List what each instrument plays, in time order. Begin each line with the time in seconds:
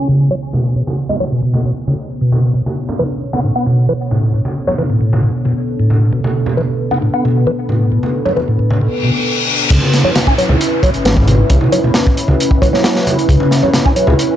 Already playing: analog synth pad C#3 B3 E4 G#4 C#5
0.09 tonewheel organ C#3, high conga
0.31 tonewheel organ F#3
0.53 tonewheel organ B2, high conga
0.76 tonewheel organ B2
0.87 high conga
1.09 tonewheel organ G#3, low conga
1.20 tonewheel organ F#3, high conga
1.32 tonewheel organ B2
1.43 tonewheel organ B2
1.53 high conga
1.65 tonewheel organ B2
1.87 tonewheel organ C#3, high conga
2.21 tonewheel organ B2
2.32 high conga
2.54 tonewheel organ B2, analog synth pad B2 D4 A4 C#5
2.66 high conga
2.89 low conga
2.99 tonewheel organ E3, high conga
3.33 tonewheel organ B3, high conga
3.44 tonewheel organ A2
3.56 tonewheel organ B3
3.66 tonewheel organ B2, high conga
3.89 tonewheel organ E3
4.11 tonewheel organ A2, high conga
4.34 tonewheel organ A2
4.45 high conga
4.67 tonewheel organ F#3, low conga
4.78 tonewheel organ E3, high conga
4.90 tonewheel organ A2
5.01 tonewheel organ A2
5.13 high conga
5.23 tonewheel organ A2
5.45 tonewheel organ B2, high conga
5.80 tonewheel organ A2
5.90 high conga
6.13 tonewheel organ B2, analog synth pad B4
6.24 high conga
6.46 low conga
6.57 tonewheel organ E3, high conga
6.91 tonewheel organ B3, high conga
7.02 tonewheel organ A2
7.14 tonewheel organ B3
7.25 tonewheel organ B2, high conga
7.47 tonewheel organ E3
7.69 tonewheel organ A2, high conga
7.92 tonewheel organ A2
8.03 high conga
8.26 tonewheel organ F#3, low conga
8.36 tonewheel organ E3, high conga
8.48 tonewheel organ A2
8.59 tonewheel organ A2
8.70 high conga
8.81 tonewheel organ A2, reverse cymbal
9.03 tonewheel organ B2, high conga
9.71 detuned saw bass C#2, tonewheel organ C#3, analog synth pad C#4 E4 B4, kick, closed hi-hat, crash, downlifter
9.83 tonewheel organ C#3, high conga
9.93 snare, closed hi-hat
10.04 tonewheel organ F#3, low conga
10.15 tonewheel organ C#3, snare, closed hi-hat, high conga
10.27 tonewheel organ C#4, kick
10.38 tonewheel organ F#3, closed hi-hat
10.49 detuned saw bass C#2, tonewheel organ B2, high conga
10.61 closed hi-hat
10.83 tonewheel organ F#3, kick, closed hi-hat, high conga
10.94 detuned saw bass G#1, closed hi-hat
11.05 detuned saw bass G#1, tonewheel organ E3, snare, closed hi-hat
11.17 kick
11.27 tonewheel organ B2, closed hi-hat, high conga
11.50 detuned saw bass C#2, tonewheel organ C#3, kick, closed hi-hat
11.61 tonewheel organ B2, high conga
11.72 tonewheel organ F#3, closed hi-hat
11.84 tonewheel organ B2, low conga
11.94 snare, closed hi-hat, high conga
12.07 kick
12.17 closed hi-hat
12.28 detuned saw bass C#2, high conga
12.40 closed hi-hat
12.51 kick
12.62 tonewheel organ F#3, kick, closed hi-hat, high conga
12.73 tonewheel organ F#3, snare
12.84 snare, closed hi-hat
12.96 snare
13.07 closed hi-hat, high conga
13.19 closed hi-hat
13.29 detuned saw bass C#2, tonewheel organ C#3, kick, closed hi-hat
13.40 tonewheel organ C#3, high conga
13.51 snare, closed hi-hat
13.63 tonewheel organ F#3, low conga
13.74 tonewheel organ C#3, snare, closed hi-hat, high conga
13.85 tonewheel organ C#4, kick
13.96 tonewheel organ F#3, closed hi-hat
14.07 detuned saw bass C#2, tonewheel organ B2, high conga
14.19 closed hi-hat